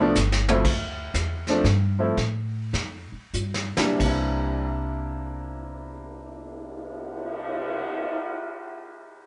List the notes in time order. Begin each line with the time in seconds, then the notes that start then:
Already playing: C2
0.00 F3 A3 B3 D4
0.15 G1, snare, hi-hat pedal
0.32 snare
0.49 D2 F3 A3 C4 E4, floor tom
0.64 D2, brush sweep, kick, snare, crash
1.14 E2, kick, snare, hi-hat pedal
1.47 F3 A3 C4 D4, snare
1.64 G2, kick, snare
1.99 F3 A3 C4 E4
2.17 A2, brush sweep, kick, snare
2.73 F2, kick, snare
3.12 muted upright bass stroke
3.33 G2, hi-hat pedal
3.54 snare
3.77 C2 E3 G3 A#3 D4, muted upright bass stroke, snare
3.97 C2 C3 A#3, kick, crash
4.04 D4
4.08 E4
4.46 cymbal swell